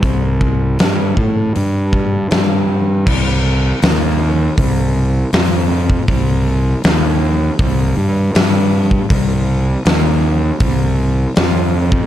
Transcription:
<<
  \new Staff \with { instrumentName = "Fingered electric bass" } { \clef bass \time 4/4 \key c \dorian \tempo 4 = 80 c,4 g,8 a,8 g,4 g,4 | c,4 ees,4 c,4 f,4 | c,4 ees,4 c,8 g,8 g,4 | c,4 ees,4 c,4 f,4 | }
  \new DrumStaff \with { instrumentName = "Drums" } \drummode { \time 4/4 <hho bd>8 bd8 <hho sn>8 bd8 hho8 bd8 <hho sn>4 | <cymc bd>4 <hho sn>4 <hho bd>4 <hho sn>8. bd16 | <hho bd>4 <hho sn>4 <hho bd>4 <hho sn>8. bd16 | <hho bd>4 <hho sn>4 <hho bd>4 <hho sn>8. bd16 | }
>>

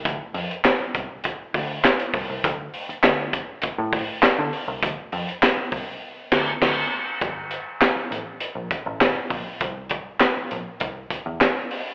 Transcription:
<<
  \new Staff \with { instrumentName = "Picked electric bass" } { \clef bass \time 4/4 \key d \minor \tempo 4 = 100 d,16 r16 f,16 r8. c,16 r8. d,8 r8 c,16 c,16 | d,8 r8 d,8 r8. a,8 r8 d16 r16 c,16 | d,16 r16 f,16 r8. c,16 r8. d,8 d,8 r8 | g,,8. r8. a,,16 r8 bes,,16 r16 a,,16 g,,16 r16 bes,,16 r16 |
c,8. r8. bes,,16 r16 c,8 r16 e,16 r4 | }
  \new DrumStaff \with { instrumentName = "Drums" } \drummode { \time 4/4 <hh bd>8 hho16 hh16 <hc hh sn>8 <hh bd>8 <hh bd>8 <hho bd>8 <hc hh sn>16 hh16 <hho bd>8 | <hh bd>8 hho16 hh16 <hc hh sn>8 <hh bd>8 <hh bd>8 <hho bd>8 <hc hh sn>8 hho8 | <hh bd>8 hho16 hh16 <hc hh sn>8 <hho bd>8 r8 <cymc bd sn>8 <cymc bd sn>4 | <hh bd>8 hh8 <hc hh sn>8 hh8 hh8 <hh bd>8 <hc hh sn>8 <hho bd>8 |
<hh bd>8 <hh bd>8 <hc hh sn>8 hh8 <hh bd>8 <hh bd>8 <hc hh sn>8 hho8 | }
>>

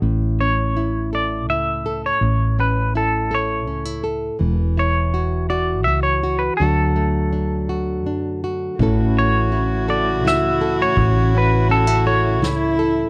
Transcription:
<<
  \new Staff \with { instrumentName = "Clean electric guitar" } { \time 3/4 \key a \major \tempo 4 = 82 r8 cis''4 d''8 e''8. cis''16~ | cis''8 b'8 a'8 cis''4 r8 | r8 cis''4 d''8 e''16 cis''8 b'16 | a'2~ a'8 r8 |
r8 cis''4 d''8 e''8. cis''16~ | cis''8 b'8 a'8 cis''4 r8 | }
  \new Staff \with { instrumentName = "Cello" } { \time 3/4 \key a \major r2. | r2. | r2. | r2. |
fis'2.~ | fis'2 e'4 | }
  \new Staff \with { instrumentName = "Nylon-string guitar" } { \time 3/4 \key a \major << { a8 cis'8 e'8 a'8 e'8 a'8 | r8 cis'8 e'8 a'8 cis'16 e'16 a'8 | r8 e'8 fis'8 fis'8 fis'8 fis'8 | <fis a d' fis'>8 a8 d'8 fis'8 d'8 fis'8 |
<e cis' e' a'>4 e'8 a'8 e'8 a'8 | r8 cis'8 cis'16 e'16 a'8 e'8 a'8 | } \\ { a,2. | a,2. | e2. | d2. |
a,2. | a,2. | } >> }
  \new Staff \with { instrumentName = "String section" } { \time 3/4 \key a \major r2. | r2. | r2. | r2. |
<cis a e'>2.~ | <cis a e'>2. | }
  \new Staff \with { instrumentName = "Fretless electric bass" } { \clef bass \time 3/4 \key a \major a,,2 cis,4 | a,,2 cis,4 | e,,2 cis,4 | d,2 fis,4 |
a,,2 cis,4 | a,,2 cis,4 | }
  \new DrumStaff \with { instrumentName = "Drums" } \drummode { \time 3/4 r4 r4 r4 | r4 r4 r4 | r4 r4 r4 | r4 r4 r4 |
bd4 cymr4 <cymr sn>8 cymr8 | <bd cymr>4 cymr4 <cymr sn>8 cymr8 | }
>>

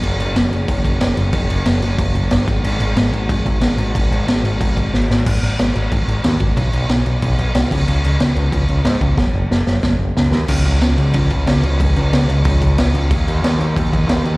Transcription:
<<
  \new Staff \with { instrumentName = "Picked electric bass" } { \clef bass \time 4/4 \key gis \minor \tempo 4 = 183 fis,,8 fis,,8 fis,,8 fis,,8 fis,,8 fis,,8 fis,,8 fis,,8 | fis,,8 fis,,8 fis,,8 fis,,8 fis,,4 g,,8 gis,,8 | gis,,8 gis,,8 gis,,8 gis,,8 gis,,8 gis,,8 gis,,8 gis,,8 | gis,,8 gis,,8 gis,,8 gis,,8 gis,,4 gis,,8 gis,,8 |
gis,,8 gis,,8 gis,,8 gis,,8 gis,,8 gis,,8 dis,8 gis,,8 | b,,8 b,,8 b,,8 b,,8 b,,8 b,,8 bis,,8 cis,8 | cis,8 cis,8 cis,8 cis,8 cis,8 cis,8 gis,8 cis,8 | fis,,8 fis,,8 fis,,8 fis,,8 fis,,8 fis,,8 cis,8 dis,8 |
cis,8 cis,8 cis,8 cis,8 cis,8 cis,8 cis,8 cis,8 | cis,8 cis,8 cis,8 cis,8 cis,4 cis,8 cis,8 | dis,8 dis,8 dis,8 dis,8 dis,8 dis,8 dis,8 dis,8 | }
  \new DrumStaff \with { instrumentName = "Drums" } \drummode { \time 4/4 cymc8 cymc8 <cymc sn>8 cymc8 <cymc bd>8 <cymc bd>8 <cymc sn>8 cymc8 | <cymc bd>8 cymc8 <cymc sn>8 cymc8 <cymc bd>8 <cymc bd>8 <cymc sn>8 <cymc bd>8 | cymc8 cymc8 <cymc sn>8 cymc8 <cymc bd>8 <cymc bd>8 <cymc sn>8 cymc8 | <cymc bd>8 cymc8 <cymc sn>8 cymc8 <cymc bd>8 <cymc bd>8 sn8 sn8 |
<cymc bd>8 cymc8 <cymc sn>8 cymc8 <cymc bd>8 cymc8 <cymc sn>8 <cymc bd>8 | <cymc bd>8 cymc8 <cymc sn>8 cymc8 <cymc bd>8 cymc8 <cymc sn>8 <cymc bd>8 | cymc8 cymc8 <cymc sn>8 cymc8 <cymc bd>8 cymc8 <cymc sn>8 <cymc bd>8 | <bd sn>4 sn8 sn8 <bd sn>4 sn8 sn8 |
<cymc bd>8 cymc8 <cymc sn>8 cymc8 <cymc bd>8 <cymc bd>8 <cymc sn>8 cymc8 | <cymc bd>8 cymc8 <cymc sn>8 cymc8 <cymc bd>8 <cymc bd>8 <cymc sn>8 cymc8 | <cymc bd>8 cymc8 <cymc sn>8 cymc8 <cymc bd>8 <cymc bd>8 <cymc sn>8 cymc8 | }
>>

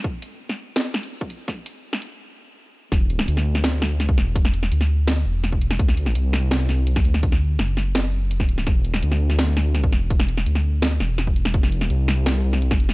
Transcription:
<<
  \new Staff \with { instrumentName = "Detuned saw bass" } { \clef bass \time 4/4 \key d \mixolydian \tempo 4 = 167 r1 | r1 | e,,4 d,4. d,4 e,,8~ | e,,4 d,4. e,,4. |
d,4 c,4. c,4 d,8~ | d,4 fis,,2. | e,,4 d,4. d,4 e,,8~ | e,,4 d,4. e,,4. |
f,,4 c,4. c,4 f,,8 | }
  \new DrumStaff \with { instrumentName = "Drums" } \drummode { \time 4/4 bd8 hh8 r16 sn8. sn8 sn16 hh16 r16 bd16 hh8 | <bd sn>8 hh8 r16 sn16 hh8 r4 r4 | <hh bd sn>8 hh16 sn16 hh16 sn8 sn16 <hh sn>8 sn8 <hh sn>16 bd16 <hh sn>8 | <hh bd>16 sn16 hh16 sn16 hh16 sn8. <hh sn>4 <hh sn>16 bd16 hh16 sn16 |
<hh bd>16 sn16 hh16 sn16 hh8 sn8 <hh sn>8 sn8 hh16 <bd sn>16 hh16 sn16 | <hh bd>16 sn8. <hh sn>8 sn8 <hh sn>4 hh16 <bd sn>16 hh16 sn16 | <hh bd sn>8 hh16 sn16 hh16 sn8 sn16 <hh sn>8 sn8 <hh sn>16 bd16 <hh sn>8 | <hh bd>16 sn16 hh16 sn16 hh16 sn8. <hh sn>8 sn8 <hh sn>16 bd16 hh16 sn16 |
<hh bd>16 sn16 hh16 sn16 hh8 sn8 <hh sn>8. sn16 hh16 <bd sn>16 hh16 sn16 | }
>>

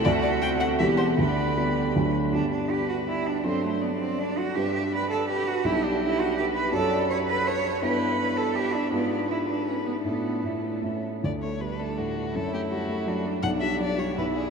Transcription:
<<
  \new Staff \with { instrumentName = "Violin" } { \time 3/4 \key g \major \tempo 4 = 162 d''8 d''8 g''8 fis''8 e''8 c''8 | d''2 r4 | r4 b'4 d''4 | c''4 d''2 |
e''4 d''4 b'4 | g'2 b'4 | \key d \major d''4 b'4 a'4 | g'4 b'4 e''4 |
d''4 b'2 | a'2~ a'8 r8 | d''8 cis''8 b'8 a'8 fis'4 | a'8 g'8 fis'4. r8 |
fis''8 e''8 d''8 cis''8 b'8 gis'8 | }
  \new Staff \with { instrumentName = "Cello" } { \time 3/4 \key g \major fis'2 g'4 | b'2~ b'8 r8 | d'8 d'8 g'8 fis'8 e'8 d'8 | c'8 a8 b8 c'8 d'8 fis'8 |
g'8 g'8 b'8 a'8 g'8 fis'8 | e'8 d'8 e'8 fis'8 g'8 b'8 | \key d \major a'4 cis''8 b'8 cis''4 | b'4. a'8 g'8 d'8 |
b8 b8 e'8 d'8 cis'8 b8 | b4 a4 r4 | r4 d'2 | e'2 d'4 |
d'2 e'4 | }
  \new Staff \with { instrumentName = "Grand piano" } { \time 3/4 \key g \major <d, d>4 <a c' fis'>4 <e,, e, g b g'>4 | <d, d>4 <g b g'>4 <d, d fis a a'>4 | <g, g b g'>2. | <g, fis d' a'>2. |
<g, g d' b'>2. | <b,, g d' d''>2. | \key d \major <fis, fis fis' d''>2. | <g, b e' b'>2. |
<gis, d' eis' b'>2. | <a, d' e' e''>4 <a, d' e' e''>4 <a, cis' e' e''>4 | d,8 a8 g8 a8 a,8 a8 | fis,8 a8 g8 a8 fis8 a8 |
b,,8 g8 fis8 g8 b,,8 <e' d''>8 | }
>>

